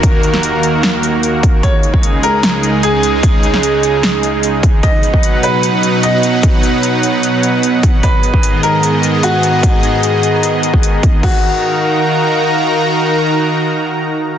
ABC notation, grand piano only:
X:1
M:4/4
L:1/8
Q:1/4=150
K:Ebm
V:1 name="Grand piano"
B8 | d3 B3 A2- | A8 | ^d3 =B3 d2- |
^d8 | c3 B3 G2- | G8 | G8- |
G8 |]